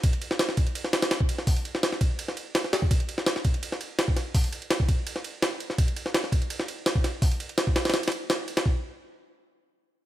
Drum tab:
RD |x-x-x---x---x-x-x---x-x-x---x---|--x-x---x---x---x---x---x---x---|x-x-x---x---x-x-x---x---x---x---|--x-x-x-x---x---x---x---x---x---|
HH |--------------------------------|o-------------------------------|--------------------------------|o-------------------------------|
SD |------o-o-o-------o-o-o-o-----o-|------o-o-o-------o-----o-o-o---|------o-o-o-------o-----o---o---|--------o---------o-----o-----o-|
BD |o-----------o-------------o-----|o-----------o-----------------o-|o-----------o-------------o-----|o---------o-o-------------------|

RD |x-x-x---x---x-x-x---x---x---x---|--x-x-x-x---x-xxx-xxx---x---x-x-|--------------------------------|
HH |--------------------------------|o-------------------------------|--------------------------------|
SD |------o-o-o-------o-----o---o---|--------o---o-ooo--o----o-----o-|--------------------------------|
BD |o-----------o-------------o-----|o---------o---------------------|o-------------------------------|